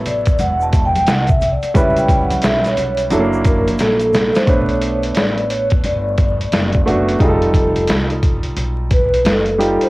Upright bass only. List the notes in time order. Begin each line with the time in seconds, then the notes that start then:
Already playing: A1
0.39 E1
1.07 C2
1.63 muted upright bass stroke
1.75 C#2
2.44 B1
3.12 F#1
3.80 A#1
4.36 muted upright bass stroke
4.47 B1
5.16 A1
5.84 G1
6.52 F#1
7.21 F1
7.89 C2
8.57 B1
9.25 F#1